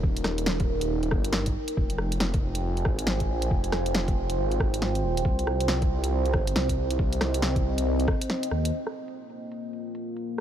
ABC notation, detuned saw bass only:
X:1
M:4/4
L:1/8
Q:"Swing 16ths" 1/4=138
K:Fm
V:1 name="Detuned saw bass" clef=bass
E,,,4- E,,, G,,,2 z | F,,,4- F,,, A,,,2 B,,, | F,,,4 A,,,3 E,,, | C,,4- C,, G,,, C,,2 |
C,,4- C,, z2 E,, | z8 |]